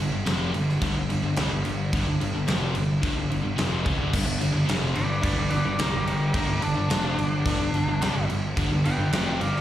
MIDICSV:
0, 0, Header, 1, 5, 480
1, 0, Start_track
1, 0, Tempo, 554529
1, 1662, Time_signature, 4, 2, 24, 8
1, 8318, End_track
2, 0, Start_track
2, 0, Title_t, "Lead electric guitar"
2, 0, Program_c, 0, 29
2, 4300, Note_on_c, 0, 71, 90
2, 4302, Note_on_c, 0, 74, 97
2, 4512, Note_off_c, 0, 71, 0
2, 4520, Note_off_c, 0, 74, 0
2, 4522, Note_on_c, 0, 71, 82
2, 4530, Note_on_c, 0, 74, 98
2, 4750, Note_off_c, 0, 71, 0
2, 4761, Note_on_c, 0, 71, 78
2, 4763, Note_off_c, 0, 74, 0
2, 4773, Note_on_c, 0, 74, 91
2, 4994, Note_off_c, 0, 71, 0
2, 5011, Note_off_c, 0, 74, 0
2, 5018, Note_on_c, 0, 67, 78
2, 5027, Note_on_c, 0, 70, 85
2, 5232, Note_off_c, 0, 70, 0
2, 5234, Note_off_c, 0, 67, 0
2, 5243, Note_on_c, 0, 67, 80
2, 5245, Note_on_c, 0, 70, 74
2, 5476, Note_off_c, 0, 67, 0
2, 5485, Note_off_c, 0, 70, 0
2, 5492, Note_on_c, 0, 67, 82
2, 5501, Note_on_c, 0, 70, 106
2, 5720, Note_off_c, 0, 67, 0
2, 5728, Note_on_c, 0, 62, 104
2, 5734, Note_off_c, 0, 70, 0
2, 7140, Note_off_c, 0, 62, 0
2, 7658, Note_on_c, 0, 71, 91
2, 7669, Note_on_c, 0, 79, 115
2, 7885, Note_off_c, 0, 71, 0
2, 7895, Note_on_c, 0, 71, 86
2, 7896, Note_off_c, 0, 79, 0
2, 7906, Note_on_c, 0, 79, 93
2, 8121, Note_off_c, 0, 71, 0
2, 8136, Note_off_c, 0, 79, 0
2, 8144, Note_on_c, 0, 74, 78
2, 8148, Note_on_c, 0, 77, 87
2, 8318, Note_off_c, 0, 74, 0
2, 8318, Note_off_c, 0, 77, 0
2, 8318, End_track
3, 0, Start_track
3, 0, Title_t, "Distorted electric guitar"
3, 0, Program_c, 1, 30
3, 0, Note_on_c, 1, 43, 78
3, 0, Note_on_c, 1, 50, 83
3, 93, Note_off_c, 1, 43, 0
3, 94, Note_off_c, 1, 50, 0
3, 103, Note_on_c, 1, 43, 69
3, 104, Note_on_c, 1, 50, 81
3, 214, Note_off_c, 1, 43, 0
3, 215, Note_off_c, 1, 50, 0
3, 218, Note_on_c, 1, 41, 100
3, 218, Note_on_c, 1, 48, 98
3, 223, Note_on_c, 1, 53, 114
3, 453, Note_off_c, 1, 41, 0
3, 453, Note_off_c, 1, 48, 0
3, 455, Note_off_c, 1, 53, 0
3, 462, Note_on_c, 1, 50, 80
3, 465, Note_on_c, 1, 43, 71
3, 654, Note_off_c, 1, 50, 0
3, 656, Note_off_c, 1, 43, 0
3, 698, Note_on_c, 1, 43, 93
3, 703, Note_on_c, 1, 50, 101
3, 813, Note_off_c, 1, 43, 0
3, 815, Note_off_c, 1, 50, 0
3, 831, Note_on_c, 1, 43, 67
3, 836, Note_on_c, 1, 50, 85
3, 936, Note_off_c, 1, 50, 0
3, 940, Note_off_c, 1, 43, 0
3, 946, Note_on_c, 1, 50, 72
3, 951, Note_on_c, 1, 43, 59
3, 1054, Note_off_c, 1, 43, 0
3, 1056, Note_off_c, 1, 50, 0
3, 1065, Note_on_c, 1, 43, 70
3, 1066, Note_on_c, 1, 50, 77
3, 1184, Note_off_c, 1, 43, 0
3, 1184, Note_off_c, 1, 50, 0
3, 1202, Note_on_c, 1, 48, 94
3, 1202, Note_on_c, 1, 55, 106
3, 1305, Note_off_c, 1, 48, 0
3, 1305, Note_off_c, 1, 55, 0
3, 1307, Note_on_c, 1, 43, 74
3, 1313, Note_on_c, 1, 50, 71
3, 1422, Note_off_c, 1, 43, 0
3, 1423, Note_off_c, 1, 50, 0
3, 1432, Note_on_c, 1, 43, 69
3, 1433, Note_on_c, 1, 50, 76
3, 1619, Note_off_c, 1, 43, 0
3, 1620, Note_off_c, 1, 50, 0
3, 1673, Note_on_c, 1, 43, 91
3, 1679, Note_on_c, 1, 50, 103
3, 1780, Note_off_c, 1, 43, 0
3, 1783, Note_off_c, 1, 50, 0
3, 1803, Note_on_c, 1, 43, 54
3, 1805, Note_on_c, 1, 50, 62
3, 1899, Note_off_c, 1, 43, 0
3, 1900, Note_off_c, 1, 50, 0
3, 1910, Note_on_c, 1, 43, 70
3, 1910, Note_on_c, 1, 50, 89
3, 2012, Note_off_c, 1, 43, 0
3, 2021, Note_off_c, 1, 50, 0
3, 2023, Note_on_c, 1, 43, 74
3, 2031, Note_on_c, 1, 50, 80
3, 2135, Note_off_c, 1, 50, 0
3, 2136, Note_off_c, 1, 43, 0
3, 2138, Note_on_c, 1, 48, 105
3, 2140, Note_on_c, 1, 41, 107
3, 2143, Note_on_c, 1, 53, 111
3, 2373, Note_off_c, 1, 48, 0
3, 2374, Note_off_c, 1, 41, 0
3, 2375, Note_off_c, 1, 53, 0
3, 2385, Note_on_c, 1, 43, 77
3, 2390, Note_on_c, 1, 50, 69
3, 2575, Note_off_c, 1, 43, 0
3, 2578, Note_off_c, 1, 50, 0
3, 2610, Note_on_c, 1, 43, 87
3, 2613, Note_on_c, 1, 50, 110
3, 2725, Note_off_c, 1, 43, 0
3, 2728, Note_off_c, 1, 50, 0
3, 2735, Note_on_c, 1, 43, 73
3, 2738, Note_on_c, 1, 50, 72
3, 2846, Note_off_c, 1, 43, 0
3, 2853, Note_off_c, 1, 50, 0
3, 2857, Note_on_c, 1, 43, 63
3, 2863, Note_on_c, 1, 50, 66
3, 2954, Note_off_c, 1, 43, 0
3, 2960, Note_off_c, 1, 50, 0
3, 2964, Note_on_c, 1, 43, 67
3, 2971, Note_on_c, 1, 50, 80
3, 3079, Note_off_c, 1, 43, 0
3, 3083, Note_off_c, 1, 50, 0
3, 3083, Note_on_c, 1, 41, 95
3, 3086, Note_on_c, 1, 48, 98
3, 3089, Note_on_c, 1, 53, 98
3, 3324, Note_off_c, 1, 48, 0
3, 3325, Note_off_c, 1, 41, 0
3, 3327, Note_off_c, 1, 53, 0
3, 3328, Note_on_c, 1, 49, 101
3, 3331, Note_on_c, 1, 56, 104
3, 3447, Note_on_c, 1, 43, 95
3, 3448, Note_off_c, 1, 49, 0
3, 3449, Note_off_c, 1, 56, 0
3, 3453, Note_on_c, 1, 50, 102
3, 3562, Note_off_c, 1, 43, 0
3, 3565, Note_off_c, 1, 50, 0
3, 3573, Note_on_c, 1, 43, 89
3, 3575, Note_on_c, 1, 50, 104
3, 3671, Note_off_c, 1, 43, 0
3, 3672, Note_off_c, 1, 50, 0
3, 3681, Note_on_c, 1, 43, 51
3, 3683, Note_on_c, 1, 50, 71
3, 3788, Note_off_c, 1, 43, 0
3, 3794, Note_off_c, 1, 50, 0
3, 3799, Note_on_c, 1, 43, 74
3, 3805, Note_on_c, 1, 50, 77
3, 3903, Note_off_c, 1, 43, 0
3, 3906, Note_off_c, 1, 50, 0
3, 3914, Note_on_c, 1, 43, 74
3, 3917, Note_on_c, 1, 50, 76
3, 4023, Note_off_c, 1, 43, 0
3, 4026, Note_on_c, 1, 41, 93
3, 4032, Note_off_c, 1, 50, 0
3, 4036, Note_on_c, 1, 48, 99
3, 4046, Note_on_c, 1, 53, 104
3, 4277, Note_off_c, 1, 41, 0
3, 4282, Note_off_c, 1, 48, 0
3, 4287, Note_off_c, 1, 53, 0
3, 4288, Note_on_c, 1, 43, 71
3, 4291, Note_on_c, 1, 50, 70
3, 4487, Note_off_c, 1, 43, 0
3, 4489, Note_off_c, 1, 50, 0
3, 4519, Note_on_c, 1, 43, 90
3, 4526, Note_on_c, 1, 50, 101
3, 4639, Note_off_c, 1, 43, 0
3, 4640, Note_off_c, 1, 50, 0
3, 4649, Note_on_c, 1, 43, 66
3, 4650, Note_on_c, 1, 50, 74
3, 4754, Note_off_c, 1, 43, 0
3, 4756, Note_off_c, 1, 50, 0
3, 4764, Note_on_c, 1, 43, 67
3, 4766, Note_on_c, 1, 50, 65
3, 4881, Note_off_c, 1, 50, 0
3, 4882, Note_off_c, 1, 43, 0
3, 4891, Note_on_c, 1, 50, 81
3, 4892, Note_on_c, 1, 43, 74
3, 5004, Note_off_c, 1, 50, 0
3, 5007, Note_on_c, 1, 48, 89
3, 5016, Note_on_c, 1, 55, 109
3, 5017, Note_off_c, 1, 43, 0
3, 5128, Note_off_c, 1, 48, 0
3, 5132, Note_off_c, 1, 55, 0
3, 5132, Note_on_c, 1, 43, 71
3, 5134, Note_on_c, 1, 50, 81
3, 5249, Note_off_c, 1, 50, 0
3, 5251, Note_off_c, 1, 43, 0
3, 5260, Note_on_c, 1, 50, 73
3, 5261, Note_on_c, 1, 43, 65
3, 5453, Note_off_c, 1, 50, 0
3, 5454, Note_off_c, 1, 43, 0
3, 5490, Note_on_c, 1, 43, 95
3, 5496, Note_on_c, 1, 50, 109
3, 5594, Note_off_c, 1, 43, 0
3, 5595, Note_off_c, 1, 50, 0
3, 5604, Note_on_c, 1, 43, 63
3, 5606, Note_on_c, 1, 50, 69
3, 5710, Note_off_c, 1, 43, 0
3, 5719, Note_off_c, 1, 50, 0
3, 5721, Note_on_c, 1, 43, 77
3, 5729, Note_on_c, 1, 50, 86
3, 5837, Note_off_c, 1, 43, 0
3, 5840, Note_off_c, 1, 50, 0
3, 5847, Note_on_c, 1, 43, 70
3, 5851, Note_on_c, 1, 50, 80
3, 5958, Note_off_c, 1, 43, 0
3, 5961, Note_on_c, 1, 41, 99
3, 5967, Note_off_c, 1, 50, 0
3, 5971, Note_on_c, 1, 48, 100
3, 5971, Note_on_c, 1, 53, 111
3, 6205, Note_off_c, 1, 41, 0
3, 6208, Note_off_c, 1, 48, 0
3, 6209, Note_off_c, 1, 53, 0
3, 6211, Note_on_c, 1, 50, 79
3, 6212, Note_on_c, 1, 43, 73
3, 6409, Note_off_c, 1, 43, 0
3, 6409, Note_off_c, 1, 50, 0
3, 6452, Note_on_c, 1, 43, 101
3, 6454, Note_on_c, 1, 50, 94
3, 6570, Note_off_c, 1, 43, 0
3, 6571, Note_off_c, 1, 50, 0
3, 6585, Note_on_c, 1, 50, 71
3, 6586, Note_on_c, 1, 43, 70
3, 6695, Note_off_c, 1, 50, 0
3, 6698, Note_off_c, 1, 43, 0
3, 6706, Note_on_c, 1, 50, 81
3, 6708, Note_on_c, 1, 43, 69
3, 6810, Note_off_c, 1, 43, 0
3, 6811, Note_off_c, 1, 50, 0
3, 6820, Note_on_c, 1, 43, 71
3, 6822, Note_on_c, 1, 50, 78
3, 6930, Note_off_c, 1, 50, 0
3, 6934, Note_on_c, 1, 48, 100
3, 6941, Note_off_c, 1, 43, 0
3, 6943, Note_on_c, 1, 55, 105
3, 7050, Note_off_c, 1, 48, 0
3, 7055, Note_off_c, 1, 55, 0
3, 7057, Note_on_c, 1, 43, 70
3, 7058, Note_on_c, 1, 50, 84
3, 7159, Note_off_c, 1, 43, 0
3, 7169, Note_off_c, 1, 50, 0
3, 7170, Note_on_c, 1, 43, 66
3, 7180, Note_on_c, 1, 50, 69
3, 7368, Note_off_c, 1, 43, 0
3, 7373, Note_off_c, 1, 50, 0
3, 7411, Note_on_c, 1, 43, 94
3, 7423, Note_on_c, 1, 50, 108
3, 7529, Note_off_c, 1, 43, 0
3, 7535, Note_off_c, 1, 50, 0
3, 7543, Note_on_c, 1, 43, 62
3, 7546, Note_on_c, 1, 50, 79
3, 7658, Note_off_c, 1, 43, 0
3, 7661, Note_off_c, 1, 50, 0
3, 7669, Note_on_c, 1, 43, 75
3, 7672, Note_on_c, 1, 50, 75
3, 7771, Note_off_c, 1, 43, 0
3, 7780, Note_off_c, 1, 50, 0
3, 7781, Note_on_c, 1, 43, 72
3, 7790, Note_on_c, 1, 50, 80
3, 7897, Note_off_c, 1, 43, 0
3, 7901, Note_on_c, 1, 41, 104
3, 7906, Note_off_c, 1, 50, 0
3, 7909, Note_on_c, 1, 48, 100
3, 7913, Note_on_c, 1, 53, 114
3, 8133, Note_off_c, 1, 41, 0
3, 8138, Note_off_c, 1, 48, 0
3, 8140, Note_off_c, 1, 53, 0
3, 8143, Note_on_c, 1, 43, 72
3, 8147, Note_on_c, 1, 50, 79
3, 8318, Note_off_c, 1, 43, 0
3, 8318, Note_off_c, 1, 50, 0
3, 8318, End_track
4, 0, Start_track
4, 0, Title_t, "Picked electric bass"
4, 0, Program_c, 2, 34
4, 0, Note_on_c, 2, 31, 88
4, 95, Note_off_c, 2, 31, 0
4, 110, Note_on_c, 2, 31, 73
4, 218, Note_off_c, 2, 31, 0
4, 224, Note_on_c, 2, 29, 100
4, 446, Note_off_c, 2, 29, 0
4, 472, Note_on_c, 2, 31, 84
4, 691, Note_off_c, 2, 31, 0
4, 704, Note_on_c, 2, 31, 94
4, 815, Note_off_c, 2, 31, 0
4, 827, Note_on_c, 2, 31, 79
4, 937, Note_off_c, 2, 31, 0
4, 957, Note_on_c, 2, 31, 80
4, 1062, Note_off_c, 2, 31, 0
4, 1068, Note_on_c, 2, 31, 84
4, 1177, Note_off_c, 2, 31, 0
4, 1195, Note_on_c, 2, 36, 98
4, 1300, Note_off_c, 2, 36, 0
4, 1307, Note_on_c, 2, 31, 89
4, 1417, Note_off_c, 2, 31, 0
4, 1441, Note_on_c, 2, 31, 82
4, 1656, Note_off_c, 2, 31, 0
4, 1674, Note_on_c, 2, 31, 90
4, 1780, Note_off_c, 2, 31, 0
4, 1803, Note_on_c, 2, 31, 79
4, 1905, Note_off_c, 2, 31, 0
4, 1917, Note_on_c, 2, 31, 86
4, 2022, Note_off_c, 2, 31, 0
4, 2034, Note_on_c, 2, 31, 76
4, 2140, Note_off_c, 2, 31, 0
4, 2155, Note_on_c, 2, 29, 104
4, 2372, Note_off_c, 2, 29, 0
4, 2392, Note_on_c, 2, 31, 81
4, 2610, Note_off_c, 2, 31, 0
4, 2623, Note_on_c, 2, 31, 97
4, 2734, Note_off_c, 2, 31, 0
4, 2747, Note_on_c, 2, 31, 80
4, 2856, Note_off_c, 2, 31, 0
4, 2864, Note_on_c, 2, 31, 80
4, 2975, Note_off_c, 2, 31, 0
4, 2979, Note_on_c, 2, 31, 84
4, 3092, Note_off_c, 2, 31, 0
4, 3103, Note_on_c, 2, 29, 94
4, 3326, Note_off_c, 2, 29, 0
4, 3338, Note_on_c, 2, 37, 91
4, 3452, Note_off_c, 2, 37, 0
4, 3460, Note_on_c, 2, 31, 87
4, 3572, Note_off_c, 2, 31, 0
4, 3579, Note_on_c, 2, 31, 96
4, 3692, Note_off_c, 2, 31, 0
4, 3699, Note_on_c, 2, 31, 80
4, 3812, Note_off_c, 2, 31, 0
4, 3818, Note_on_c, 2, 31, 89
4, 3925, Note_off_c, 2, 31, 0
4, 3930, Note_on_c, 2, 31, 84
4, 4047, Note_off_c, 2, 31, 0
4, 4055, Note_on_c, 2, 29, 99
4, 4282, Note_off_c, 2, 29, 0
4, 4298, Note_on_c, 2, 31, 92
4, 4523, Note_off_c, 2, 31, 0
4, 4531, Note_on_c, 2, 31, 94
4, 4648, Note_off_c, 2, 31, 0
4, 4652, Note_on_c, 2, 31, 84
4, 4768, Note_off_c, 2, 31, 0
4, 4776, Note_on_c, 2, 31, 78
4, 4890, Note_off_c, 2, 31, 0
4, 4894, Note_on_c, 2, 31, 80
4, 5005, Note_off_c, 2, 31, 0
4, 5010, Note_on_c, 2, 36, 94
4, 5127, Note_off_c, 2, 36, 0
4, 5132, Note_on_c, 2, 31, 86
4, 5245, Note_off_c, 2, 31, 0
4, 5250, Note_on_c, 2, 31, 79
4, 5479, Note_off_c, 2, 31, 0
4, 5488, Note_on_c, 2, 31, 89
4, 5606, Note_off_c, 2, 31, 0
4, 5618, Note_on_c, 2, 31, 81
4, 5722, Note_off_c, 2, 31, 0
4, 5727, Note_on_c, 2, 31, 90
4, 5846, Note_off_c, 2, 31, 0
4, 5854, Note_on_c, 2, 31, 78
4, 5967, Note_off_c, 2, 31, 0
4, 5972, Note_on_c, 2, 29, 112
4, 6200, Note_off_c, 2, 29, 0
4, 6215, Note_on_c, 2, 31, 86
4, 6441, Note_off_c, 2, 31, 0
4, 6451, Note_on_c, 2, 31, 100
4, 6568, Note_off_c, 2, 31, 0
4, 6576, Note_on_c, 2, 31, 76
4, 6683, Note_off_c, 2, 31, 0
4, 6688, Note_on_c, 2, 31, 76
4, 6806, Note_off_c, 2, 31, 0
4, 6825, Note_on_c, 2, 31, 91
4, 6928, Note_off_c, 2, 31, 0
4, 6933, Note_on_c, 2, 36, 100
4, 7049, Note_off_c, 2, 36, 0
4, 7060, Note_on_c, 2, 31, 93
4, 7172, Note_off_c, 2, 31, 0
4, 7186, Note_on_c, 2, 31, 83
4, 7407, Note_off_c, 2, 31, 0
4, 7420, Note_on_c, 2, 31, 97
4, 7532, Note_off_c, 2, 31, 0
4, 7548, Note_on_c, 2, 31, 87
4, 7657, Note_off_c, 2, 31, 0
4, 7665, Note_on_c, 2, 31, 80
4, 7771, Note_off_c, 2, 31, 0
4, 7776, Note_on_c, 2, 31, 73
4, 7890, Note_off_c, 2, 31, 0
4, 7895, Note_on_c, 2, 29, 98
4, 8121, Note_off_c, 2, 29, 0
4, 8141, Note_on_c, 2, 31, 94
4, 8318, Note_off_c, 2, 31, 0
4, 8318, End_track
5, 0, Start_track
5, 0, Title_t, "Drums"
5, 227, Note_on_c, 9, 49, 79
5, 235, Note_on_c, 9, 38, 106
5, 313, Note_off_c, 9, 49, 0
5, 322, Note_off_c, 9, 38, 0
5, 468, Note_on_c, 9, 49, 63
5, 555, Note_off_c, 9, 49, 0
5, 599, Note_on_c, 9, 38, 32
5, 685, Note_off_c, 9, 38, 0
5, 706, Note_on_c, 9, 49, 88
5, 708, Note_on_c, 9, 36, 114
5, 793, Note_off_c, 9, 49, 0
5, 794, Note_off_c, 9, 36, 0
5, 951, Note_on_c, 9, 49, 63
5, 1037, Note_off_c, 9, 49, 0
5, 1180, Note_on_c, 9, 49, 88
5, 1189, Note_on_c, 9, 38, 116
5, 1267, Note_off_c, 9, 49, 0
5, 1275, Note_off_c, 9, 38, 0
5, 1426, Note_on_c, 9, 49, 64
5, 1512, Note_off_c, 9, 49, 0
5, 1670, Note_on_c, 9, 49, 84
5, 1671, Note_on_c, 9, 36, 111
5, 1757, Note_off_c, 9, 36, 0
5, 1757, Note_off_c, 9, 49, 0
5, 1914, Note_on_c, 9, 49, 60
5, 2000, Note_off_c, 9, 49, 0
5, 2143, Note_on_c, 9, 49, 73
5, 2151, Note_on_c, 9, 38, 111
5, 2229, Note_off_c, 9, 49, 0
5, 2238, Note_off_c, 9, 38, 0
5, 2378, Note_on_c, 9, 49, 64
5, 2464, Note_off_c, 9, 49, 0
5, 2624, Note_on_c, 9, 36, 111
5, 2625, Note_on_c, 9, 49, 76
5, 2711, Note_off_c, 9, 36, 0
5, 2711, Note_off_c, 9, 49, 0
5, 2869, Note_on_c, 9, 49, 52
5, 2956, Note_off_c, 9, 49, 0
5, 3098, Note_on_c, 9, 49, 76
5, 3107, Note_on_c, 9, 38, 112
5, 3184, Note_off_c, 9, 49, 0
5, 3193, Note_off_c, 9, 38, 0
5, 3340, Note_on_c, 9, 36, 104
5, 3343, Note_on_c, 9, 49, 61
5, 3427, Note_off_c, 9, 36, 0
5, 3429, Note_off_c, 9, 49, 0
5, 3579, Note_on_c, 9, 36, 101
5, 3580, Note_on_c, 9, 49, 85
5, 3580, Note_on_c, 9, 57, 122
5, 3666, Note_off_c, 9, 36, 0
5, 3666, Note_off_c, 9, 49, 0
5, 3666, Note_off_c, 9, 57, 0
5, 3819, Note_on_c, 9, 49, 72
5, 3905, Note_off_c, 9, 49, 0
5, 4056, Note_on_c, 9, 49, 86
5, 4065, Note_on_c, 9, 38, 107
5, 4143, Note_off_c, 9, 49, 0
5, 4152, Note_off_c, 9, 38, 0
5, 4288, Note_on_c, 9, 49, 70
5, 4374, Note_off_c, 9, 49, 0
5, 4530, Note_on_c, 9, 49, 94
5, 4531, Note_on_c, 9, 36, 115
5, 4617, Note_off_c, 9, 49, 0
5, 4618, Note_off_c, 9, 36, 0
5, 4764, Note_on_c, 9, 49, 60
5, 4773, Note_on_c, 9, 38, 32
5, 4851, Note_off_c, 9, 49, 0
5, 4860, Note_off_c, 9, 38, 0
5, 5009, Note_on_c, 9, 49, 84
5, 5018, Note_on_c, 9, 38, 126
5, 5096, Note_off_c, 9, 49, 0
5, 5104, Note_off_c, 9, 38, 0
5, 5257, Note_on_c, 9, 49, 64
5, 5344, Note_off_c, 9, 49, 0
5, 5489, Note_on_c, 9, 36, 106
5, 5493, Note_on_c, 9, 49, 92
5, 5576, Note_off_c, 9, 36, 0
5, 5579, Note_off_c, 9, 49, 0
5, 5731, Note_on_c, 9, 49, 65
5, 5817, Note_off_c, 9, 49, 0
5, 5973, Note_on_c, 9, 49, 77
5, 5981, Note_on_c, 9, 38, 114
5, 6059, Note_off_c, 9, 49, 0
5, 6068, Note_off_c, 9, 38, 0
5, 6219, Note_on_c, 9, 49, 63
5, 6306, Note_off_c, 9, 49, 0
5, 6455, Note_on_c, 9, 36, 119
5, 6465, Note_on_c, 9, 49, 90
5, 6541, Note_off_c, 9, 36, 0
5, 6551, Note_off_c, 9, 49, 0
5, 6697, Note_on_c, 9, 49, 55
5, 6784, Note_off_c, 9, 49, 0
5, 6938, Note_on_c, 9, 49, 81
5, 6947, Note_on_c, 9, 38, 105
5, 7025, Note_off_c, 9, 49, 0
5, 7033, Note_off_c, 9, 38, 0
5, 7181, Note_on_c, 9, 49, 63
5, 7268, Note_off_c, 9, 49, 0
5, 7419, Note_on_c, 9, 36, 109
5, 7422, Note_on_c, 9, 49, 83
5, 7505, Note_off_c, 9, 36, 0
5, 7509, Note_off_c, 9, 49, 0
5, 7663, Note_on_c, 9, 49, 69
5, 7750, Note_off_c, 9, 49, 0
5, 7899, Note_on_c, 9, 49, 84
5, 7907, Note_on_c, 9, 38, 108
5, 7985, Note_off_c, 9, 49, 0
5, 7994, Note_off_c, 9, 38, 0
5, 8145, Note_on_c, 9, 49, 65
5, 8231, Note_off_c, 9, 49, 0
5, 8277, Note_on_c, 9, 38, 36
5, 8318, Note_off_c, 9, 38, 0
5, 8318, End_track
0, 0, End_of_file